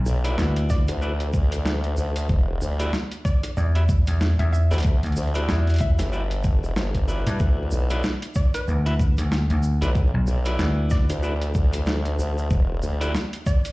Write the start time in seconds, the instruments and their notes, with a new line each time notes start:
0.06 wobble bass B1, shaker
0.24 clean electric guitar E4 F#4 B4 D5, closed hi-hat, shaker
0.38 slap bass D2, snare, shaker
0.56 closed hi-hat
0.70 synth pluck D5, kick, snare, shaker
0.88 wobble bass D2, closed hi-hat, shaker
1.01 clean electric guitar E4 F#4 B4 D5, shaker
1.20 closed hi-hat
1.34 wobble bass D2, kick, shaker
1.52 closed hi-hat, shaker
1.66 snare, shaker
1.84 closed hi-hat
1.97 wobble bass D2, shaker
2.16 closed hi-hat, shaker
2.29 wobble bass E1, kick, shaker
2.61 wobble bass D2, shaker
2.79 clean electric guitar E4 F#4 G4 D5, closed hi-hat, shaker
2.93 snare, shaker
3.11 closed hi-hat
3.25 synth pluck D5, kick, shaker
3.43 cross-stick, closed hi-hat, shaker
3.57 slap bass E2, synth pluck D5, shaker
3.75 clean electric guitar E4 F#4 G4 E5, closed hi-hat
3.89 kick, shaker
4.07 slap bass E2, closed hi-hat, shaker
4.21 snare, shaker
4.39 slap bass E2, synth pluck E5, closed hi-hat
4.53 synth pluck E5, shaker
4.71 wobble bass D2, clean electric guitar E4 F#4 G4 D5, closed hi-hat, shaker
4.73 closed hi-hat
4.78 closed hi-hat
4.80 closed hi-hat
4.83 kick, closed hi-hat, shaker
5.03 slap bass D2, closed hi-hat
5.06 closed hi-hat
5.12 closed hi-hat
5.16 wobble bass D2, closed hi-hat, shaker
5.23 closed hi-hat
5.28 closed hi-hat
5.34 clean electric guitar E4 F#4 G4 D5, closed hi-hat, shaker
5.49 slap bass E2, snare, shaker
5.67 closed hi-hat
5.69 closed hi-hat
5.74 closed hi-hat
5.76 closed hi-hat
5.78 synth pluck E5, kick, closed hi-hat, shaker
5.99 wobble bass G1, synth pluck E5, snare, closed hi-hat, shaker
6.12 clean electric guitar E4 F#4 G4 D5, shaker
6.31 closed hi-hat
6.44 kick, shaker
6.63 wobble bass E1, shaker
6.76 wobble bass G1, snare, shaker
6.95 kick, closed hi-hat
7.08 clean electric guitar E4 F#4 B4 D5, shaker
7.27 slap bass G2, closed hi-hat, shaker
7.39 wobble bass D2, kick, shaker
7.71 wobble bass B1, shaker
7.90 clean electric guitar E4 F#4 B4 D5, closed hi-hat, shaker
8.04 snare, shaker
8.22 closed hi-hat
8.35 synth pluck D5, kick, shaker
8.54 synth pluck B4, cross-stick, closed hi-hat, shaker
8.68 slap bass D2, shaker
8.86 clean electric guitar E4 F#4 B4 E5, closed hi-hat
8.99 kick, shaker
9.17 slap bass D2, cross-stick, closed hi-hat, shaker
9.32 snare, shaker
9.50 slap bass D2, closed hi-hat
9.63 shaker
9.81 wobble bass B1, clean electric guitar E4 F#4 B4 D5, closed hi-hat, shaker
9.95 kick, shaker
10.14 slap bass B1
10.27 wobble bass B1, shaker
10.45 clean electric guitar E4 F#4 B4 D5, closed hi-hat, shaker
10.59 slap bass D2, snare, shaker
10.90 synth pluck D5, kick, snare, shaker
11.10 wobble bass D2, closed hi-hat, shaker
11.23 clean electric guitar E4 F#4 B4 D5, shaker
11.41 closed hi-hat
11.55 wobble bass D2, kick, shaker
11.73 closed hi-hat, shaker
11.86 snare, shaker
12.05 closed hi-hat
12.19 wobble bass D2, shaker
12.38 shaker
12.51 wobble bass E1, kick, shaker
12.83 wobble bass D2, shaker
13.01 clean electric guitar E4 F#4 G4 D5, closed hi-hat, shaker
13.15 snare, shaker
13.33 closed hi-hat
13.46 synth pluck D5, kick, shaker
13.65 cross-stick, closed hi-hat, shaker